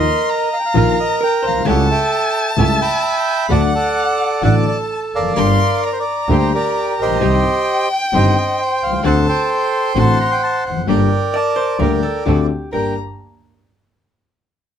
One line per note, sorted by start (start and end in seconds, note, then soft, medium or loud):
0.00 0.49 A#4 medium
0.00 0.55 D#5 medium
0.00 0.31 C6 loud
0.30 1.67 A#5 loud
0.53 0.58 F5 medium
0.60 0.64 G5 medium
0.66 0.76 F5 medium
0.73 0.94 A#1 medium
0.73 0.94 A#1 loud
0.73 0.94 A#2 medium
0.73 0.93 D#3 medium
0.73 0.93 F3 medium
0.73 0.93 A#3 medium
0.73 0.94 A#3 medium
0.73 0.93 D#4 medium
0.73 0.93 F4 medium
0.73 0.94 F4 medium
0.73 1.63 A#4 medium
0.73 0.99 F5 loud
1.00 1.20 D#5 medium
1.21 1.44 A#4 medium
1.21 1.45 G5 medium
1.43 1.65 B1 medium
1.43 1.64 C5 loud
1.47 1.54 A#1 medium
1.47 1.66 F5 loud
1.54 1.60 B1 medium
1.60 1.66 C2 medium
1.65 1.85 C#2 loud
1.65 1.85 C#3 medium
1.65 1.85 G3 medium
1.65 1.84 A3 medium
1.65 1.85 A3 medium
1.65 1.85 C#4 medium
1.65 1.85 E4 medium
1.65 1.85 G4 loud
1.65 2.54 A4 medium
1.65 1.97 C#5 medium
1.65 3.49 A5 loud
1.69 1.89 F#5 medium
1.91 2.57 E5 medium
1.91 2.55 G5 loud
2.57 2.76 C#2 medium
2.57 2.76 C#2 loud
2.57 2.76 C#3 medium
2.57 2.76 G3 medium
2.57 2.76 A3 medium
2.57 2.76 C#4 medium
2.57 2.76 E4 medium
2.57 2.76 G4 medium
2.57 2.80 E5 medium
2.57 2.80 A5 loud
2.81 3.46 E5 medium
2.81 3.46 G5 medium
2.81 3.53 B5 loud
3.49 3.69 D2 loud
3.49 3.69 D2 medium
3.49 3.69 D3 medium
3.49 3.69 F#3 medium
3.49 3.69 A3 medium
3.49 3.69 D4 medium
3.49 3.69 F#4 medium
3.49 3.73 D5 medium
3.49 4.45 F#5 loud
3.49 3.74 F#5 medium
3.49 3.62 A5 loud
3.75 4.42 A4 medium
3.75 4.43 D5 medium
3.75 4.43 F#5 medium
4.42 4.62 A1 medium
4.42 4.62 A2 medium
4.42 4.62 D3 medium
4.42 4.62 F#3 medium
4.42 4.62 A3 medium
4.42 4.62 D4 medium
4.42 4.62 F#4 medium
4.42 5.33 A4 medium
4.42 4.66 D5 medium
4.42 4.54 F#5 medium
4.42 5.13 A5 medium
4.67 4.78 D5 medium
4.92 5.02 A5 medium
5.13 5.36 F1 medium
5.13 6.04 A#4 medium
5.13 5.84 D5 medium
5.13 5.80 F5 medium
5.19 5.24 E2 soft
5.25 5.30 F2 medium
5.31 5.36 F#2 medium
5.36 5.56 G1 loud
5.36 5.56 G1 medium
5.36 5.56 G2 medium
5.36 5.56 D3 medium
5.36 5.56 G3 medium
5.36 5.56 A#3 medium
5.36 5.56 D4 medium
5.36 5.56 G4 medium
5.36 5.85 C6 loud
5.83 5.91 D5 medium
5.83 7.24 A#5 loud
5.93 5.98 C5 medium
6.00 6.29 D5 medium
6.29 6.49 D2 loud
6.29 6.49 D2 medium
6.29 6.49 D3 medium
6.29 6.49 G3 medium
6.29 6.49 A#3 medium
6.29 6.49 D4 medium
6.29 6.49 G4 medium
6.29 6.53 G4 medium
6.29 6.52 C5 medium
6.54 7.00 G4 medium
6.54 7.18 A#4 medium
6.54 6.97 D5 medium
6.98 7.21 A#1 medium
6.98 7.88 G4 medium
6.98 7.88 C5 medium
6.98 7.88 D#5 loud
7.04 7.10 A1 soft
7.10 7.16 A#1 medium
7.15 7.21 B1 medium
7.21 7.41 C2 medium
7.21 7.41 C2 loud
7.21 7.40 C3 medium
7.21 7.40 D#3 medium
7.21 7.40 G3 medium
7.21 7.40 C4 medium
7.21 7.41 C4 medium
7.21 7.41 D#4 medium
7.21 7.40 G4 medium
7.21 7.41 G4 medium
7.21 9.07 G5 loud
7.93 8.13 G5 medium
8.13 8.32 G1 medium
8.13 8.32 G1 loud
8.13 8.32 G2 medium
8.13 8.32 D#3 medium
8.13 8.32 G3 medium
8.13 8.32 C4 medium
8.13 8.32 D#4 medium
8.13 8.32 G4 medium
8.13 9.01 C5 medium
8.13 8.37 D#5 medium
8.13 8.38 G5 loud
8.38 8.60 D#5 medium
8.62 8.84 G5 medium
8.81 9.03 C2 medium
8.81 9.03 F5 medium
8.86 8.92 B1 soft
8.92 8.98 C2 medium
8.98 9.04 C#2 medium
9.03 9.23 D2 loud
9.03 9.23 D2 medium
9.03 9.23 D3 medium
9.03 9.23 A3 medium
9.03 9.23 C4 medium
9.03 9.23 D4 medium
9.03 9.23 F#4 medium
9.03 9.92 A4 medium
9.03 9.27 C5 medium
9.03 9.26 F#5 medium
9.03 9.51 A5 loud
9.29 9.97 C5 medium
9.29 9.99 G5 loud
9.50 10.87 C6 loud
9.95 10.15 A1 loud
9.95 10.15 A2 medium
9.95 10.14 D3 medium
9.95 10.15 A3 medium
9.95 10.14 C4 medium
9.95 10.15 C4 medium
9.95 10.15 D4 medium
9.95 10.15 F#4 medium
9.99 10.85 C5 medium
9.99 10.65 F#5 medium
9.99 10.19 A5 loud
10.21 10.30 A#5 medium
10.32 10.42 G5 medium
10.43 10.64 A5 medium
10.65 10.87 F1 medium
10.65 10.87 F#5 medium
10.70 10.76 E2 medium
10.77 10.82 F2 medium
10.82 10.87 F#2 medium
10.87 11.06 G1 loud
10.87 11.06 G1 medium
10.87 11.06 G2 medium
10.87 11.06 D3 medium
10.87 11.06 G3 medium
10.87 11.06 A#3 medium
10.87 11.07 A#3 medium
10.87 11.06 D4 medium
10.87 11.07 G4 medium
10.87 11.76 A#4 medium
10.87 11.34 D5 medium
10.87 11.35 G5 medium
11.34 11.56 D5 loud
11.34 11.81 D5 medium
11.34 11.77 A5 loud
11.56 11.78 C5 loud
11.79 11.99 D2 medium
11.79 11.98 D3 medium
11.79 11.98 G3 medium
11.79 11.99 A#3 medium
11.79 11.99 D4 medium
11.79 11.99 G4 medium
11.79 12.02 A#4 medium
11.79 12.24 A#4 medium
11.79 12.47 D5 medium
11.79 12.24 G5 medium
12.03 12.25 A4 medium
12.26 12.46 D2 medium
12.26 12.46 D3 medium
12.26 12.46 A3 medium
12.26 12.46 C4 medium
12.26 12.46 D4 medium
12.26 12.46 F#4 medium
12.26 12.69 G4 medium
12.72 12.92 G1 medium
12.72 12.92 G2 medium
12.72 12.92 A#3 medium
12.72 12.92 A#3 soft
12.72 12.92 D4 medium
12.72 12.92 D4 soft
12.72 12.92 G4 medium
12.72 12.94 A#4 medium
12.72 12.95 G5 medium
12.72 12.94 A#5 medium